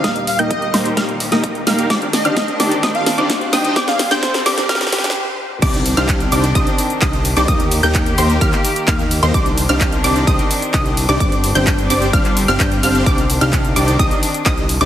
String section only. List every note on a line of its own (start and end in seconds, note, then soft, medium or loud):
0.04 1.88 D#2 medium
0.04 1.88 A#2 medium
0.04 1.88 G3 medium
1.90 3.74 D#3 medium
1.90 5.59 C4 medium
1.90 3.74 D4 medium
3.76 5.60 G2 medium
3.76 5.60 D3 medium
5.62 9.31 D#3 medium
5.62 7.46 C4 medium
5.62 7.46 D4 medium
7.48 9.32 A#3 medium
7.48 9.32 G4 medium
9.34 11.19 D#3 medium
9.34 14.86 C4 medium
9.34 11.19 D4 medium
11.20 13.04 G3 medium
11.20 13.05 D4 medium
13.06 14.86 D#3 medium
13.06 14.86 D4 medium